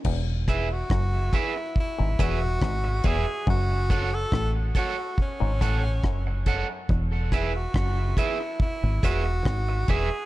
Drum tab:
CC |x-------|--------|--------|
HH |-x-x-x-x|-x-x-x-x|-x-x-x-x|
SD |-rr---r-|-rr---r-|-rr---r-|
BD |oooooooo|oooooooo|oooooooo|